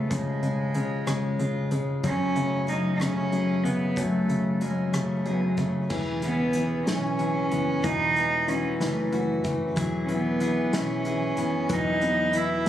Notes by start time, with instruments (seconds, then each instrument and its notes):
Already playing: grand piano C#3, steel-string acoustic guitar G#3 C#4 F4, cello A3
0.10 grand piano C#3, steel-string acoustic guitar F3, kick, closed hi-hat
0.14 cello G#3
0.42 grand piano C#3, steel-string acoustic guitar G#3, closed hi-hat
0.74 grand piano C#3, steel-string acoustic guitar C#4, closed hi-hat
1.07 grand piano C#3, steel-string acoustic guitar G#3, cross-stick, closed hi-hat
1.39 grand piano C#3, steel-string acoustic guitar F4, closed hi-hat
1.71 grand piano C#3, steel-string acoustic guitar G#3, closed hi-hat
2.03 grand piano F#2, steel-string acoustic guitar F#3, cello C#4, kick, closed hi-hat
2.36 grand piano C#3, steel-string acoustic guitar A3, closed hi-hat
2.67 grand piano F#2, steel-string acoustic guitar C#4, cello D#4, closed hi-hat
2.95 cello D#4
2.99 grand piano C#3, steel-string acoustic guitar A3, cello C#4, cross-stick, closed hi-hat
3.32 grand piano F#2, steel-string acoustic guitar G#4, closed hi-hat
3.64 grand piano C#3, steel-string acoustic guitar A3, cello B3, closed hi-hat
3.96 grand piano F#2, steel-string acoustic guitar F#3, cello A3, kick, closed hi-hat
4.29 grand piano C#3, closed hi-hat
4.61 grand piano F#2, cello G#3, steel-string acoustic guitar C#4, closed hi-hat
4.93 grand piano C#3, steel-string acoustic guitar A3, cello A3, cross-stick, closed hi-hat
5.25 grand piano F#2, steel-string acoustic guitar G#4, closed hi-hat
5.32 cello B3
5.41 cello A3
5.49 cello G#3
5.57 grand piano C#3, steel-string acoustic guitar A3, cello A3, kick, closed hi-hat
5.90 upright bass E1, steel-string acoustic guitar E3 G#4, grand piano E3, kick, crash
6.22 grand piano E3, cello B3, steel-string acoustic guitar C#4, closed hi-hat
6.53 grand piano E3, steel-string acoustic guitar G#4, closed hi-hat
6.87 upright bass B1, grand piano E3, steel-string acoustic guitar C#4, cello C#4, snare, closed hi-hat
7.19 grand piano E3, steel-string acoustic guitar G#4, closed hi-hat
7.51 upright bass F#1, grand piano E3, steel-string acoustic guitar B3, closed hi-hat
7.84 upright bass E1, steel-string acoustic guitar E3 F#4, grand piano E3, cello D#4, kick, closed hi-hat
8.16 grand piano E3, steel-string acoustic guitar C#4, closed hi-hat
8.48 grand piano E3, cello C#4, steel-string acoustic guitar F#4, closed hi-hat
8.80 upright bass F#1, grand piano E3, cello A3, steel-string acoustic guitar C#4, snare, closed hi-hat
9.12 grand piano E3, steel-string acoustic guitar F#4, closed hi-hat
9.44 upright bass F#1, grand piano E3, steel-string acoustic guitar A3, kick, closed hi-hat
9.76 upright bass E1, grand piano E3, steel-string acoustic guitar F#3 G#4, kick, closed hi-hat
10.04 grand piano E3, cello C#4
10.09 cello B3, steel-string acoustic guitar E4, closed hi-hat
10.40 grand piano E3, steel-string acoustic guitar G#4, closed hi-hat
10.73 upright bass B1, grand piano E3, cello C#4, steel-string acoustic guitar E4, snare, closed hi-hat
11.05 grand piano E3, steel-string acoustic guitar G#4, closed hi-hat
11.37 upright bass F#1, grand piano E3, steel-string acoustic guitar B3, closed hi-hat
11.69 upright bass E1, grand piano E3, steel-string acoustic guitar F#3, cello D#4, kick, closed hi-hat
12.01 grand piano B3, steel-string acoustic guitar B3, closed hi-hat
12.33 grand piano E3, steel-string acoustic guitar E4, cello E4, closed hi-hat
12.66 grand piano B3